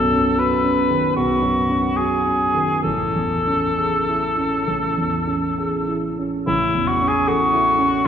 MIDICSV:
0, 0, Header, 1, 3, 480
1, 0, Start_track
1, 0, Tempo, 790514
1, 1201, Tempo, 899550
1, 1670, Time_signature, 4, 2, 24, 8
1, 3601, Tempo, 796813
1, 4566, End_track
2, 0, Start_track
2, 0, Title_t, "Cor anglais"
2, 0, Program_c, 0, 69
2, 0, Note_on_c, 0, 69, 89
2, 238, Note_on_c, 0, 71, 84
2, 247, Note_off_c, 0, 69, 0
2, 704, Note_off_c, 0, 71, 0
2, 707, Note_on_c, 0, 66, 78
2, 1194, Note_on_c, 0, 68, 75
2, 1203, Note_off_c, 0, 66, 0
2, 1654, Note_off_c, 0, 68, 0
2, 1657, Note_on_c, 0, 69, 80
2, 3338, Note_off_c, 0, 69, 0
2, 3601, Note_on_c, 0, 64, 91
2, 3845, Note_on_c, 0, 66, 84
2, 3854, Note_off_c, 0, 64, 0
2, 3967, Note_on_c, 0, 68, 86
2, 3976, Note_off_c, 0, 66, 0
2, 4085, Note_on_c, 0, 66, 93
2, 4094, Note_off_c, 0, 68, 0
2, 4566, Note_off_c, 0, 66, 0
2, 4566, End_track
3, 0, Start_track
3, 0, Title_t, "Grand piano"
3, 0, Program_c, 1, 0
3, 0, Control_c, 1, 64, 127
3, 0, Note_on_c, 1, 35, 59
3, 0, Note_on_c, 1, 42, 45
3, 77, Note_on_c, 1, 61, 47
3, 169, Note_off_c, 1, 42, 0
3, 230, Note_on_c, 1, 66, 52
3, 327, Note_off_c, 1, 61, 0
3, 388, Note_on_c, 1, 61, 50
3, 484, Note_off_c, 1, 66, 0
3, 547, Note_on_c, 1, 51, 47
3, 643, Note_off_c, 1, 61, 0
3, 680, Note_off_c, 1, 35, 0
3, 706, Note_on_c, 1, 35, 48
3, 803, Note_off_c, 1, 51, 0
3, 863, Note_on_c, 1, 42, 43
3, 1028, Note_on_c, 1, 61, 42
3, 1130, Note_off_c, 1, 42, 0
3, 1201, Note_on_c, 1, 66, 47
3, 1291, Note_off_c, 1, 61, 0
3, 1353, Note_on_c, 1, 61, 39
3, 1447, Note_off_c, 1, 66, 0
3, 1502, Note_on_c, 1, 51, 42
3, 1605, Note_off_c, 1, 61, 0
3, 1647, Note_off_c, 1, 35, 0
3, 1663, Note_on_c, 1, 33, 50
3, 1666, Note_off_c, 1, 51, 0
3, 1680, Control_c, 1, 64, 0
3, 1782, Control_c, 1, 64, 127
3, 1832, Note_on_c, 1, 40, 37
3, 1997, Note_on_c, 1, 61, 40
3, 2096, Note_off_c, 1, 40, 0
3, 2161, Note_on_c, 1, 68, 41
3, 2259, Note_off_c, 1, 61, 0
3, 2326, Note_on_c, 1, 64, 41
3, 2420, Note_off_c, 1, 68, 0
3, 2480, Note_on_c, 1, 61, 41
3, 2580, Note_off_c, 1, 64, 0
3, 2618, Note_off_c, 1, 33, 0
3, 2641, Note_on_c, 1, 33, 41
3, 2736, Note_off_c, 1, 61, 0
3, 2803, Note_on_c, 1, 40, 38
3, 2958, Note_on_c, 1, 61, 39
3, 3058, Note_off_c, 1, 40, 0
3, 3125, Note_on_c, 1, 68, 42
3, 3217, Note_off_c, 1, 61, 0
3, 3285, Note_on_c, 1, 64, 38
3, 3384, Note_off_c, 1, 68, 0
3, 3449, Note_on_c, 1, 61, 39
3, 3541, Note_off_c, 1, 64, 0
3, 3578, Note_off_c, 1, 33, 0
3, 3598, Note_on_c, 1, 33, 63
3, 3602, Note_off_c, 1, 61, 0
3, 3612, Control_c, 1, 64, 0
3, 3713, Control_c, 1, 64, 127
3, 3764, Note_on_c, 1, 40, 51
3, 3924, Note_on_c, 1, 61, 52
3, 4023, Note_off_c, 1, 40, 0
3, 4082, Note_on_c, 1, 69, 57
3, 4179, Note_off_c, 1, 61, 0
3, 4238, Note_on_c, 1, 64, 58
3, 4335, Note_off_c, 1, 69, 0
3, 4389, Note_on_c, 1, 61, 56
3, 4493, Note_off_c, 1, 64, 0
3, 4534, Note_off_c, 1, 33, 0
3, 4566, Note_off_c, 1, 61, 0
3, 4566, End_track
0, 0, End_of_file